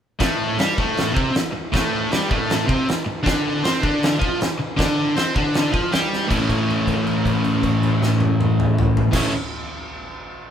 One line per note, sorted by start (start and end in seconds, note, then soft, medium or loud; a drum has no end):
0.19 0.58 A2 loud
0.19 0.58 A3 loud
0.19 kick loud
0.19 snare loud
0.19 crash medium
0.58 0.77 G3 medium
0.58 0.78 G4 loud
0.58 snare loud
0.58 crash medium
0.77 1.13 A2 medium
0.77 1.13 A3 loud
0.77 kick loud
0.97 snare loud
0.97 crash medium
1.13 1.32 C3 loud
1.13 1.34 C4 loud
1.13 kick loud
1.33 muted overdriven electric guitar stroke medium
1.33 snare loud
1.33 crash medium
1.53 muted overdriven electric guitar stroke medium
1.72 2.11 A2 medium
1.72 2.12 A3 loud
1.72 kick loud
1.72 snare loud
1.72 crash medium
2.11 2.30 G3 loud
2.11 2.31 G4 loud
2.11 snare loud
2.11 crash medium
2.28 2.66 A2 medium
2.28 2.68 A3 medium
2.28 kick loud
2.50 snare loud
2.50 crash medium
2.66 2.86 C3 loud
2.66 2.87 C4 loud
2.66 kick loud
2.88 muted overdriven electric guitar stroke medium
2.88 snare loud
2.88 crash medium
3.06 muted overdriven electric guitar stroke medium
3.23 3.62 D3 medium
3.23 3.62 D4 loud
3.23 kick loud
3.23 crash medium
3.27 snare loud
3.63 3.82 C4 medium
3.63 3.82 C5 loud
3.63 snare loud
3.63 crash medium
3.81 4.19 D3 medium
3.81 4.19 D4 medium
3.81 kick loud
4.03 snare loud
4.03 crash medium
4.19 4.38 F3 medium
4.19 4.39 F4 loud
4.19 kick loud
4.40 muted overdriven electric guitar stroke medium
4.40 snare loud
4.40 crash medium
4.59 muted overdriven electric guitar stroke medium
4.77 5.15 D3 loud
4.77 5.15 D4 loud
4.77 kick loud
4.77 snare loud
4.77 crash medium
5.16 5.34 C4 medium
5.16 5.35 C5 loud
5.16 snare loud
5.16 crash medium
5.34 5.72 D3 medium
5.34 5.72 D4 loud
5.34 kick loud
5.54 snare loud
5.54 crash medium
5.72 5.91 F3 medium
5.72 5.91 F4 loud
5.72 kick loud
5.92 6.29 G3 medium
5.92 6.30 G4 loud
5.92 snare loud
5.92 crash medium
6.13 snare medium
6.27 9.11 A2 medium
6.27 9.12 E3 loud
6.27 9.13 A3 loud
6.27 9.14 C#4 loud
6.27 9.15 E4 loud
6.27 kick loud
6.31 crash medium
6.49 kick medium
6.49 crash soft
6.70 crash soft
6.87 kick medium
6.87 crash medium
7.07 crash medium
7.25 kick medium
7.25 crash soft
7.44 crash medium
7.63 kick medium
7.63 crash medium
7.83 crash medium
8.03 snare medium
8.20 high tom medium
8.41 high tom loud
8.60 mid tom medium
8.79 mid tom loud
8.97 floor tom loud
9.11 9.29 A2 medium
9.11 9.30 E3 medium
9.11 9.30 A3 loud
9.11 9.31 C#4 loud
9.11 kick loud
9.11 snare medium
9.11 crash loud
9.15 9.31 E4 loud